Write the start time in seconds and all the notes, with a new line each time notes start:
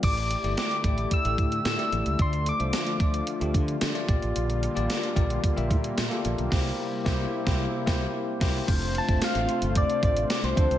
0.03 A1 D3 A3 E4 G4 D5 D6, kick, closed hi-hat, crash
0.17 closed hi-hat
0.31 closed hi-hat
0.43 G1 A3 E4 G4 D5, closed hi-hat
0.57 D6, snare, closed hi-hat
0.71 closed hi-hat
0.84 A1 A3 E4 G4 D5, kick, closed hi-hat
0.98 closed hi-hat
1.11 E6, kick, closed hi-hat
1.24 A1 A3 E4 G4 A4, closed hi-hat
1.38 A2, kick, closed hi-hat
1.52 closed hi-hat
1.65 A2 E6, snare, closed hi-hat
1.77 A3 E4 G4 D5, closed hi-hat
1.92 A1, closed hi-hat
2.06 C#2, closed hi-hat
2.19 D2 F3 A3 D4 F4 D5 C6, kick, closed hi-hat
2.33 closed hi-hat
2.46 D6, closed hi-hat
2.59 C2 A3 D4 F4 C5, closed hi-hat
2.73 snare, closed hi-hat, tambourine
2.87 closed hi-hat
3.00 D2 A3 D4 F4 D5, kick, closed hi-hat
3.14 closed hi-hat
3.27 closed hi-hat
3.40 D2 A3 D4 F4 G4, closed hi-hat
3.54 D3, kick, closed hi-hat
3.68 closed hi-hat
3.81 D3, snare, closed hi-hat, tambourine
3.94 A3 D4 F4 D5, closed hi-hat
4.07 A#1 D3 G3 A#3 F4 G4 D5, kick, closed hi-hat
4.22 A1, closed hi-hat
4.36 A#1, closed hi-hat
4.50 closed hi-hat
4.63 closed hi-hat
4.75 A1 A#3 F4 G4 D5, closed hi-hat
4.90 snare, closed hi-hat, tambourine
5.03 closed hi-hat
5.15 A#1 A#3 F4 G4 D5, kick, closed hi-hat
5.30 closed hi-hat
5.44 kick, closed hi-hat
5.56 A#1 A#3 F4 G4 E5, closed hi-hat
5.71 A#2, kick, closed hi-hat
5.84 closed hi-hat
5.98 A#2, snare, closed hi-hat, tambourine
6.10 A#3 F4 G4 A4, closed hi-hat
6.25 A#1, closed hi-hat
6.38 B1, closed hi-hat
6.50 C2 C3 A#3 E4 G4 C5, kick, snare, crash
7.05 C2 A#3 E4 G4 C5, kick, snare
7.46 C2 A#3 E4 G4 C5, kick, snare
7.86 C2 A#3 E4 G4 C5, kick, snare
8.40 C2 A#3 E4 G4 C5, kick, snare, crash
8.67 F1 C3 A3 C4 D4 F4 C5, kick, closed hi-hat, crash
8.82 closed hi-hat
8.95 A5, closed hi-hat
9.07 G1 A3 C4 D4 F4 C5, kick, closed hi-hat
9.22 F5, snare, closed hi-hat, tambourine
9.35 A1, closed hi-hat
9.49 closed hi-hat
9.62 G1, closed hi-hat
9.75 D5, kick, closed hi-hat
9.90 closed hi-hat
10.02 A1 A3 C4 D4 F4 C5 D5, kick, closed hi-hat
10.17 closed hi-hat
10.30 D5, snare, closed hi-hat, tambourine
10.43 C2 C5, closed hi-hat
10.55 D2 F3 A3 C4 D4 F4 A4 C5, kick, closed hi-hat
10.70 C#2, closed hi-hat